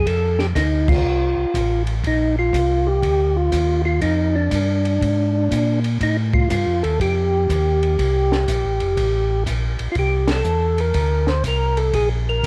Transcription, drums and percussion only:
0.06 kick, ride
0.39 snare
0.55 kick, snare, hi-hat pedal, ride
0.88 kick, crash
1.54 kick, hi-hat pedal, ride
1.87 ride
2.04 kick, ride
2.53 kick, hi-hat pedal, ride
3.03 kick, ride
3.52 kick, hi-hat pedal, ride
4.02 kick, ride
4.51 kick, hi-hat pedal, ride
4.85 ride
5.01 kick, ride
5.51 kick, hi-hat pedal, ride
5.84 ride
6.01 kick, ride
6.33 kick
6.50 kick, hi-hat pedal, ride
6.84 ride
7.00 kick, ride
7.49 kick, hi-hat pedal, ride
7.83 ride
7.99 kick, ride
8.32 snare
8.48 kick, hi-hat pedal, ride
8.80 ride
8.97 kick, ride
9.46 kick, hi-hat pedal, ride
9.79 ride
9.95 kick, ride
10.27 snare, ride
10.44 hi-hat pedal
10.78 ride
10.94 kick, ride
11.27 snare
11.44 kick, hi-hat pedal, ride
11.77 ride
11.93 kick, ride
12.43 kick, hi-hat pedal, ride

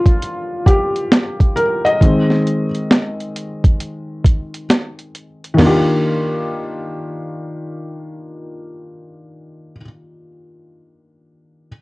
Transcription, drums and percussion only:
0.06 kick, closed hi-hat
0.22 closed hi-hat
0.66 kick, closed hi-hat
0.96 closed hi-hat
1.12 snare, closed hi-hat
1.40 kick, closed hi-hat
1.57 closed hi-hat
1.86 closed hi-hat
2.01 kick, closed hi-hat
2.30 snare
2.47 closed hi-hat
2.75 closed hi-hat
2.91 snare, closed hi-hat
3.20 closed hi-hat
3.36 closed hi-hat
3.64 kick, closed hi-hat
3.80 closed hi-hat
4.24 kick, closed hi-hat
4.54 closed hi-hat
4.70 snare, closed hi-hat
4.99 closed hi-hat
5.15 closed hi-hat
5.44 closed hi-hat
5.58 snare, floor tom, crash

